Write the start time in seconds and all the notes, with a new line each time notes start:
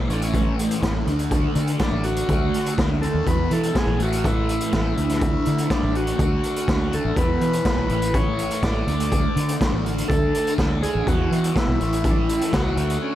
0.08 A1 A2 E3 A3 C#4, closed hi-hat
0.15 D4
0.22 C#4, closed hi-hat
0.34 kick, closed hi-hat
0.59 closed hi-hat
0.71 closed hi-hat
0.81 A1 A2 E3 A3, kick, snare, closed hi-hat
1.05 D2 D3 A3, closed hi-hat
1.09 D4
1.19 closed hi-hat
1.31 kick, closed hi-hat
1.55 D3, closed hi-hat
1.67 closed hi-hat
1.79 D3 A3 D4, kick, snare, closed hi-hat
1.83 D4
1.92 A1
2.03 F#4, closed hi-hat
2.16 closed hi-hat
2.28 D2 D3 A3 D4, kick, closed hi-hat
2.54 closed hi-hat
2.66 closed hi-hat
2.78 D2, kick, snare, closed hi-hat
3.01 D3 A3 D4 A4, closed hi-hat
3.14 D#2
3.25 E2 B2 E3 B4, kick, closed hi-hat
3.51 E3 A4, closed hi-hat
3.63 closed hi-hat
3.75 G#4, kick, snare, closed hi-hat
3.87 A#1
3.98 A1 A2 E3 F#4, closed hi-hat
4.03 A3
4.12 closed hi-hat
4.24 E4, kick, closed hi-hat
4.49 closed hi-hat
4.60 closed hi-hat
4.72 A1 A2 E3 A3, kick, snare, closed hi-hat
4.96 D2 D3 A3, closed hi-hat
5.00 D4
5.09 snare, closed hi-hat
5.21 kick, closed hi-hat
5.45 D3, closed hi-hat
5.58 closed hi-hat
5.65 D3 E4
5.70 A3 D4, kick, snare, closed hi-hat
5.83 A1
5.95 F#4, closed hi-hat
6.07 closed hi-hat
6.17 D2 D3 A3 D4, kick, closed hi-hat
6.43 closed hi-hat
6.56 closed hi-hat
6.68 D2, kick, snare, closed hi-hat
6.91 D3 A3 D4 A4, closed hi-hat
7.05 A1
7.15 E2 B2 E3 B4, kick, closed hi-hat
7.41 E3, closed hi-hat
7.53 closed hi-hat
7.65 kick, snare, closed hi-hat
7.78 B1
7.89 A1 A2 E3 A3, closed hi-hat
8.02 closed hi-hat
8.14 C#5, kick, closed hi-hat
8.39 closed hi-hat
8.51 closed hi-hat
8.62 A1 A2 E3 A3 D5, kick, snare, closed hi-hat
8.86 D2 D3 A3 D4, closed hi-hat
9.00 closed hi-hat
9.12 kick, closed hi-hat
9.36 D3, closed hi-hat
9.48 closed hi-hat
9.59 D3 A3 D4, kick, snare, closed hi-hat
9.73 A1
9.86 closed hi-hat
9.98 closed hi-hat
10.08 D2 D3 A3 A4, kick, closed hi-hat
10.12 D4
10.34 closed hi-hat
10.47 closed hi-hat
10.58 D2, kick, snare, closed hi-hat
10.82 D3 A3 D4 G#4, closed hi-hat
10.95 A1
11.05 E2 B2 E3 F#4, kick, closed hi-hat
11.31 E3, closed hi-hat
11.44 closed hi-hat
11.56 E4, kick, snare, closed hi-hat
11.68 B1
11.78 A1 A2 E3 A3, closed hi-hat
11.93 closed hi-hat
12.04 E4, kick, closed hi-hat
12.11 D4
12.18 E4
12.29 closed hi-hat
12.41 closed hi-hat
12.52 C#2 A2 E3 A3 F#4, kick, snare, closed hi-hat
12.76 D2 D3 A3, closed hi-hat
12.80 D4
12.90 closed hi-hat
13.02 C#4